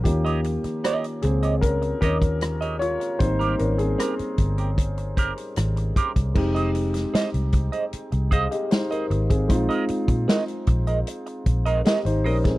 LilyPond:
<<
  \new Staff \with { instrumentName = "Clean electric guitar" } { \time 4/4 \key f \minor \tempo 4 = 76 r16 <g' des'' ees''>16 r8 <g' des'' ees''>16 r8 <g' des'' ees''>16 r8 <g' des'' ees''>16 r8 <g' des'' ees''>16 r8 | r16 <c' g' bes'>16 r8 <c' g' bes'>16 r8 <c' g' bes'>16 r8 <c' g' bes'>16 r8. <c' g' bes'>16 r16 | r16 <aes' c'' ees''>16 r8 <aes' c'' ees''>16 r8 <aes' c'' ees''>16 r8 <aes' c'' ees''>16 r8 <aes' c'' ees''>16 r8 | r16 <aes' bes' ees''>16 r8 <aes' bes' ees''>16 r8 <aes' bes' ees''>16 r8. <aes' bes' ees''>16 <aes' bes' ees''>16 r16 <aes' bes' ees''>16 r16 | }
  \new Staff \with { instrumentName = "Grand piano" } { \time 4/4 \key f \minor << { <bes g'>4. <c' aes'>8 <des' bes'>8 <des' bes'>4 <f' des''>8 | <ees' c''>8 <des' bes'>16 <c' aes'>4. r4. r16 | r2 r8 <aes' f''>16 <g' ees''>16 <ees' c''>16 bes'8 <c' aes'>16~ | <c' aes'>16 r2 r8. <g' ees''>16 <ees' c''>16 <des' bes'>16 <c' aes'>16 | } \\ { <ees f des'>1 | <g bes c'>8 r2. r8 | <aes c' ees' g'>1 | <aes c' ees' f'>1 | } >> }
  \new Staff \with { instrumentName = "Fingered electric bass" } { \clef bass \time 4/4 \key f \minor ees,8. r8. des,4 ees,4~ ees,16 r16 | aes,,8 aes,,8 r8 g,,4~ g,,16 r16 aes,,8 r16 c,16 | f,,4 r16 c,8 r8 c,8 r8. aes,,8 | bes,,16 r8 bes,16 r8 bes,,8 r8 bes,,8 r16 aes,,16 bes,,8 | }
  \new DrumStaff \with { instrumentName = "Drums" } \drummode { \time 4/4 <hh bd>16 hh16 hh16 <hh ss>16 <hh ss>16 hh16 hh16 hh16 <hh bd>16 hh16 <hh bd>16 <hh bd>16 <hh ss>16 hh16 hh16 <hh ss>16 | <hh bd>16 hh16 hh16 hh16 <hh ss>16 hh16 <hh bd>16 hh16 <hh bd>16 hh16 <hh bd>16 hh16 <hh ss>16 hh16 <hh bd>16 <hh bd ss>16 | <cymc bd>16 hh16 hh16 <hh sn>16 <hh sn>16 hh16 <hh bd>16 hh16 hh16 hh16 <hh bd>16 hh16 <hh sn>16 hh16 hh16 <hh bd>16 | <hh bd>16 hh16 hh16 <hh bd>16 <hh sn>16 hh16 <hh bd>16 hh16 hh16 hh16 <hh bd>16 hh16 <hh sn>16 hh16 hho16 <hh bd sn>16 | }
>>